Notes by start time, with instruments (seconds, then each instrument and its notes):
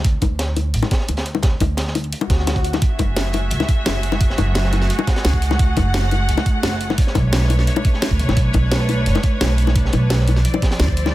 Already playing: upright bass D2
0.04 kick, closed hi-hat
0.22 upright bass D2, kick, closed hi-hat, high bongo
0.39 snare, closed hi-hat
0.57 closed hi-hat, high bongo
0.74 upright bass A1, closed hi-hat
0.82 snare, closed hi-hat, high bongo
0.91 kick, snare, closed hi-hat
1.00 snare
1.08 upright bass D2, closed hi-hat, high bongo
1.17 snare, closed hi-hat
1.25 closed hi-hat
1.35 high bongo
1.42 kick, snare, closed hi-hat
1.60 upright bass D2, kick, closed hi-hat, high bongo
1.77 snare, closed hi-hat
1.87 snare
1.95 closed hi-hat, high bongo
2.04 closed hi-hat
2.13 closed hi-hat, swell
2.21 closed hi-hat, high bongo
2.30 upright bass D2, kick, snare, closed hi-hat
2.39 snare
2.47 snare, closed hi-hat, high bongo
2.56 kick, closed hi-hat
2.64 closed hi-hat
2.73 snare, closed hi-hat, high bongo
2.82 string section A3 F#4 G#4 E5, kick, closed hi-hat
2.99 upright bass F#1, kick, closed hi-hat, high bongo
3.16 snare, closed hi-hat
3.33 closed hi-hat, high bongo
3.51 upright bass C#2, closed hi-hat
3.60 snare, closed hi-hat, high bongo
3.69 kick, closed hi-hat
3.86 upright bass F#1, snare, closed hi-hat, high bongo
4.03 closed hi-hat
4.12 snare, high bongo
4.21 kick, closed hi-hat
4.30 snare
4.38 upright bass F#1, closed hi-hat, high bongo
4.55 snare, closed hi-hat
4.64 snare
4.73 closed hi-hat, high bongo
4.82 snare
4.90 string section F#5, closed hi-hat
4.99 closed hi-hat, high bongo
5.07 kick, snare, closed hi-hat
5.16 snare, closed hi-hat
5.24 upright bass C#2, snare, closed hi-hat, high bongo
5.33 kick
5.42 closed hi-hat
5.51 snare, high bongo
5.59 kick, closed hi-hat
5.77 upright bass F#1, kick, closed hi-hat, high bongo
5.94 snare, closed hi-hat
6.11 closed hi-hat, high bongo
6.29 upright bass C#2, closed hi-hat
6.37 snare, closed hi-hat, high bongo
6.46 kick, closed hi-hat
6.63 upright bass F#1, snare, closed hi-hat, high bongo
6.81 closed hi-hat
6.89 snare, high bongo
6.98 string section D4 B4 C#5, kick, closed hi-hat
7.07 snare
7.15 upright bass B1, kick, closed hi-hat, high bongo
7.33 snare, closed hi-hat
7.42 snare
7.50 closed hi-hat, high bongo
7.59 snare
7.67 closed hi-hat
7.76 closed hi-hat, high bongo
7.85 kick, closed hi-hat
7.94 snare
8.02 snare, closed hi-hat, high bongo
8.11 upright bass D2, kick
8.19 upright bass F#1, closed hi-hat
8.28 upright bass B1, snare, high bongo
8.37 kick, closed hi-hat
8.53 upright bass B1, kick, closed hi-hat, high bongo
8.71 snare, closed hi-hat
8.89 closed hi-hat, high bongo
9.06 upright bass F#1, closed hi-hat
9.15 snare, closed hi-hat, high bongo
9.23 kick, closed hi-hat
9.41 upright bass B1, snare, closed hi-hat, high bongo
9.58 closed hi-hat
9.67 snare, high bongo
9.76 kick, closed hi-hat
9.85 snare
9.92 upright bass B1, closed hi-hat, high bongo
10.10 snare, closed hi-hat
10.19 snare
10.28 closed hi-hat, high bongo
10.36 snare
10.45 string section F3 E4 C5 D5, closed hi-hat
10.54 closed hi-hat, high bongo
10.62 kick, snare, closed hi-hat
10.71 snare, closed hi-hat
10.79 upright bass D2, snare, closed hi-hat, high bongo
10.88 kick
10.97 closed hi-hat
11.06 snare, high bongo